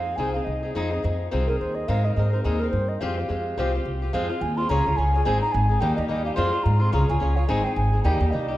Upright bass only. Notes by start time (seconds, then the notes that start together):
Already playing: F2
0.18 C2
0.47 C2
0.76 F2
1.04 F2
1.33 C2
1.61 D#2
1.89 G#2
2.17 G#2
2.45 D#2
2.73 G2
3.01 F2
3.29 F2
3.57 C2
3.85 C2
4.14 F2
4.41 D#2
4.69 C#2
4.86 C#2
4.98 C#2
5.26 G#1
5.54 G#1
5.82 D#2
5.98 D#2
6.10 D#2
6.37 F2
6.66 G#2
6.93 C#2
7.09 C#2
7.21 C#2
7.49 G#1
7.76 G#1
8.05 D#2
8.20 D#2
8.32 C2